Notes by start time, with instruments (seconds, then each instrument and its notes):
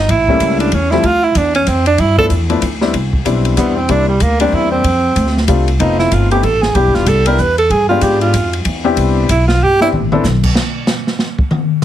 Already playing: tenor saxophone D#4
0.09 upright bass A1, tenor saxophone E4, kick, ride
0.28 grand piano G3 A3 A#3 C#4 E4, kick
0.40 upright bass C#2, kick, hi-hat pedal, ride
0.60 tenor saxophone D4, ride
0.72 upright bass E2, tenor saxophone C#4, kick, ride
0.91 grand piano F3 G3 A3 C4 E4, tenor saxophone E4, snare
1.03 upright bass D2, tenor saxophone F4, kick, ride
1.23 tenor saxophone E4
1.35 upright bass E2, tenor saxophone D4, kick, hi-hat pedal, ride
1.55 tenor saxophone C#4, ride
1.67 upright bass F2, tenor saxophone C4, kick, hi-hat pedal, ride
1.86 tenor saxophone D4, ride
1.98 upright bass G2, tenor saxophone E4, kick, ride
2.18 grand piano F3 A3 B3 D4 E4, tenor saxophone A4, kick
2.30 upright bass E2, kick, hi-hat pedal, ride
2.49 grand piano F3 A3 B3 D4 E4, ride
2.62 upright bass D2, kick, hi-hat pedal, ride
2.81 grand piano G3 B3 C4 D4 E4, snare
2.93 upright bass C2, kick, ride
3.13 kick
3.25 upright bass B1, grand piano G3 B3 C4 D4 E4, kick, hi-hat pedal, ride
3.45 ride
3.57 upright bass E2, grand piano G3 B3 C4 D4 E4, tenor saxophone B3, kick, hi-hat pedal, ride
3.76 tenor saxophone C4
3.88 upright bass C2, grand piano G3 A#3 C4 D4 E4, tenor saxophone D4, kick, ride
4.08 tenor saxophone G3
4.20 upright bass D2, tenor saxophone A#3, kick, hi-hat pedal, ride
4.40 grand piano G3 A#3 C4 D4 G4, tenor saxophone D4, ride
4.52 upright bass E2, tenor saxophone E4, kick
4.71 tenor saxophone C4
4.84 upright bass F2, kick, ride
5.16 upright bass D2, kick, hi-hat pedal, ride
5.27 snare
5.37 snare
5.48 upright bass C2, grand piano G3 A3 C4 D4 F4, kick, hi-hat pedal, ride
5.68 ride
5.79 upright bass F1, grand piano A3 B3 C4 D#4 F4, tenor saxophone D#4, kick, ride
5.99 tenor saxophone E4, snare
6.11 upright bass G1, tenor saxophone F4, kick, hi-hat pedal, ride
6.31 grand piano A3 B3 C4 D#4 G4, tenor saxophone G4, ride
6.43 upright bass A1, tenor saxophone A4, kick, ride
6.62 tenor saxophone G#4, snare
6.75 upright bass B1, grand piano G3 B3 D4 E4 G4, tenor saxophone G4, kick, ride
6.85 upright bass G1
6.94 upright bass E1, tenor saxophone F4, snare
7.06 upright bass C2, tenor saxophone A4, kick, hi-hat pedal, ride
7.26 grand piano G3 B3 D4 E4 G4, tenor saxophone A#4, ride
7.38 upright bass E2, tenor saxophone B4, kick, hi-hat pedal
7.58 tenor saxophone A4, ride
7.70 upright bass G2, tenor saxophone G#4, kick, ride
7.89 grand piano G#3 B3 D4 F4 G4, tenor saxophone F4
8.01 upright bass G#2, tenor saxophone G4, kick, hi-hat pedal, ride
8.21 tenor saxophone F4, ride
8.33 upright bass F2, kick, hi-hat pedal, ride
8.53 ride
8.65 upright bass E2, kick, ride
8.84 grand piano B3 C4 D4 E4 G4
8.97 upright bass C2, kick, hi-hat pedal, ride
9.29 upright bass B1, tenor saxophone E4, kick, hi-hat pedal, ride
9.47 tenor saxophone F4, snare
9.61 upright bass G1, tenor saxophone G4
9.81 grand piano B3 C4 D4 E4 G4, tenor saxophone E4, snare
9.92 upright bass A1, mid tom
10.12 grand piano B3 C4 D4 E4 A4, mid tom
10.24 upright bass B1, snare, hi-hat pedal
10.43 kick, crash
10.55 snare
10.87 snare, hi-hat pedal
11.07 snare
11.19 snare
11.39 kick
11.51 mid tom